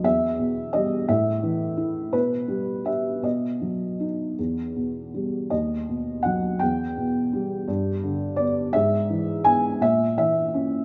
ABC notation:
X:1
M:6/8
L:1/8
Q:3/8=56
K:Em
V:1 name="Felt piano"
e2 ^d e3 | B2 e ^d2 z | z3 ^d2 f | g4- g d |
e2 ^g e e2 |]
V:2 name="Felt piano" clef=bass
E,, B,, G, A,, E, E | B,, G, G B,, F, ^D | E,, B,, G, ^D,, B,, F, | E,, B,, G, G,, D, B, |
^G,, E, B, ^A,, E, ^C |]